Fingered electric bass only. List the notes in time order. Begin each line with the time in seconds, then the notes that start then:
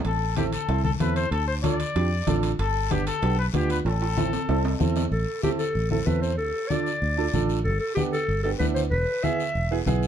0.05 A1
0.68 C2
1.00 E2
1.31 D2
1.96 F2
2.27 A1
2.59 G1
3.22 B1
3.53 D2
3.85 A1
4.49 C2
4.81 E2
5.11 A1
5.75 A1
6.07 E2
6.39 D2
7.02 D2
7.34 A1
7.65 G1
8.28 G1
8.60 D2
8.91 E1
9.55 E1
9.86 B1